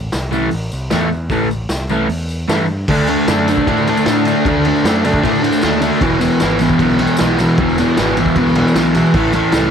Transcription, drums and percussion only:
0.12 snare, open hi-hat, tambourine
0.33 tambourine
0.51 open hi-hat
0.72 tambourine
0.90 snare, open hi-hat, tambourine
1.12 tambourine
1.30 kick, open hi-hat, tambourine
1.51 tambourine
1.69 snare, open hi-hat, tambourine
1.89 tambourine
2.09 open hi-hat, tambourine
2.29 tambourine
2.49 snare, open hi-hat, tambourine
2.68 tambourine
2.88 kick, crash, tambourine
3.07 ride, tambourine
3.18 tambourine
3.27 snare, ride, tambourine
3.48 ride, tambourine
3.57 kick
3.67 kick, ride, tambourine
3.78 tambourine
3.87 ride, tambourine
3.97 tambourine
4.06 snare, ride, tambourine
4.25 ride, tambourine
4.45 kick, ride, tambourine
4.65 ride
4.76 tambourine
4.85 snare, ride, tambourine
5.04 ride, tambourine
5.14 kick, tambourine
5.24 kick, ride, tambourine
5.35 tambourine
5.44 ride, tambourine
5.53 tambourine
5.61 snare, ride, tambourine
5.72 tambourine
5.82 ride, tambourine
5.93 tambourine
6.01 kick, ride, tambourine
6.21 ride, tambourine
6.40 snare, ride, tambourine
6.59 ride, tambourine
6.69 kick, tambourine
6.79 kick, ride, tambourine
6.90 tambourine
6.98 ride, tambourine
7.07 tambourine
7.17 snare, ride, tambourine
7.39 ride, tambourine
7.49 tambourine
7.58 kick, ride
7.70 tambourine
7.78 ride, tambourine
7.89 tambourine
7.97 snare, ride, tambourine
8.17 ride, tambourine
8.26 kick, tambourine
8.36 kick, ride, tambourine
8.49 tambourine
8.55 ride, tambourine
8.68 tambourine
8.75 snare, ride, tambourine
8.94 ride, tambourine
9.06 tambourine
9.14 kick, crash, tambourine
9.33 ride, tambourine
9.44 tambourine
9.52 snare, ride, tambourine

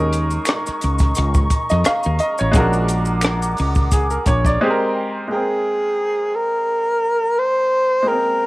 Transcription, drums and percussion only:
0.12 closed hi-hat, maracas
0.30 maracas
0.45 finger snap, cross-stick, closed hi-hat, maracas
0.66 cross-stick, maracas
0.81 closed hi-hat, maracas
0.99 kick, cross-stick, closed hi-hat, maracas
1.15 closed hi-hat, maracas
1.34 kick, maracas
1.50 kick, closed hi-hat, maracas
1.70 cross-stick, maracas
1.84 finger snap, cross-stick, closed hi-hat, maracas
2.03 maracas
2.19 closed hi-hat, maracas
2.38 maracas
2.53 kick, closed hi-hat, maracas
2.73 maracas
2.88 closed hi-hat, maracas
3.05 maracas
3.21 finger snap, cross-stick, closed hi-hat, maracas
3.42 maracas
3.57 open hi-hat, maracas
3.75 kick, maracas
3.91 kick, closed hi-hat, maracas
4.10 maracas
4.26 kick, closed hi-hat, maracas
4.45 kick, cross-stick, maracas

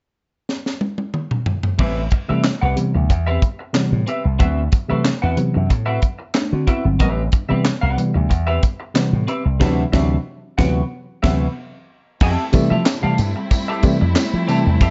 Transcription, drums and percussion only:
0.49 snare
0.66 snare
0.81 high tom
0.98 high tom
1.14 mid tom
1.31 mid tom
1.46 floor tom
1.63 floor tom
1.79 kick, crash
2.11 kick, closed hi-hat
2.44 snare, clap, closed hi-hat
2.77 closed hi-hat
3.10 kick, closed hi-hat
3.42 kick, closed hi-hat
3.75 snare, clap, closed hi-hat
4.07 closed hi-hat
4.40 kick, closed hi-hat
4.72 kick, closed hi-hat
5.05 snare, clap, closed hi-hat
5.37 closed hi-hat
5.70 kick, closed hi-hat
6.02 kick, closed hi-hat
6.35 snare, clap, closed hi-hat
6.67 kick, closed hi-hat
7.00 kick, closed hi-hat
7.32 kick, closed hi-hat
7.65 snare, clap, closed hi-hat
7.98 closed hi-hat
8.31 kick, closed hi-hat
8.63 kick, closed hi-hat
8.96 snare, clap, closed hi-hat
9.28 closed hi-hat
9.61 kick, snare, crash
9.93 kick, snare
10.59 kick, snare
11.24 kick, snare, crash
12.20 kick, crash, tambourine
12.53 kick, closed hi-hat, tambourine
12.86 snare, clap, closed hi-hat, tambourine
13.18 closed hi-hat, tambourine
13.51 kick, closed hi-hat, tambourine
13.83 kick, closed hi-hat, tambourine
14.16 snare, clap, closed hi-hat, tambourine
14.49 closed hi-hat, tambourine
14.80 kick, closed hi-hat, tambourine

